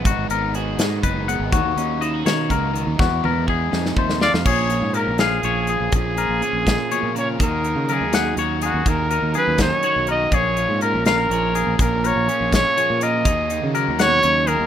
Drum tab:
CC |------------|------------|------------|x-----------|
HH |x-x-x-x-x-x-|x-x-x-x-x-x-|------------|--x-x-x-x-x-|
SD |------o-----|------o-----|o-----oo-ooo|------o-----|
T1 |------------|------------|--o---------|------------|
BD |o-------o---|o-------o---|o---o---o---|o-----------|

CC |------------|------------|------------|------------|
HH |x-x-x-x-x-x-|x-x-x-x-x-x-|x-x-x-x-x-x-|x-x-x-x-x-x-|
SD |------o-----|------o-----|------o-----|------o-----|
T1 |------------|------------|------------|------------|
BD |o-----o-----|o-----------|o-----o-----|o-----------|

CC |------------|------------|
HH |x-x-x-x-x-x-|x-x-x-x-x-x-|
SD |------o-----|------o-----|
T1 |------------|------------|
BD |o-----o-----|o-----------|